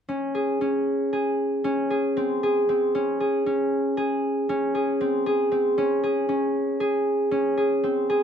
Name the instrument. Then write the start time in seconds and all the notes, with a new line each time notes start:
harp
0.09 C#4
0.35 G#4
0.61 C#4
1.13 G#4
1.64 C#4
1.90 G#4
2.17 C4
2.43 G#4
2.69 C4
2.95 C#4
3.20 G#4
3.46 C#4
3.97 G#4
4.49 C#4
4.75 G#4
5.01 C4
5.26 G#4
5.52 C4
5.78 C#4
6.04 G#4
6.29 C#4
6.80 G#4
7.31 C#4
7.57 G#4
7.84 C4
8.10 G#4